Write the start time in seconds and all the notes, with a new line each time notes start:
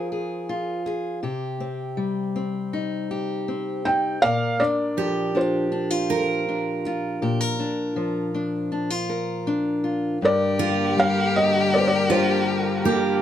Already playing: F3 C4 F4 G#4 A#4 C5
0.12 G#4
0.49 F4
0.86 G#4
1.23 C3 G4
1.60 C4
1.97 G3
2.36 C4
2.73 D#4
3.11 G4
3.48 C4
3.85 D#4 G5
4.22 A#2 A#4 D5 F5
4.60 D4 D5
4.97 F3 G4
5.35 D4 F4 C5
5.72 D4
5.90 F4
6.10 A#4
6.49 D4
6.86 F4
7.22 A#2 G4
7.41 A#4
7.59 D4
7.96 F3
8.34 D4
8.72 D4
8.90 F4
9.09 A#4
9.47 D4
9.84 F4
10.22 G2 D3 G3 A#3 G4 A#4 D5
10.59 F4 A#4
10.97 G3 F5
11.36 D#5
11.74 A#4 D5
11.80 C5
11.88 D5
12.10 D4 F4 C5
12.85 A#3 D4 G4 A#4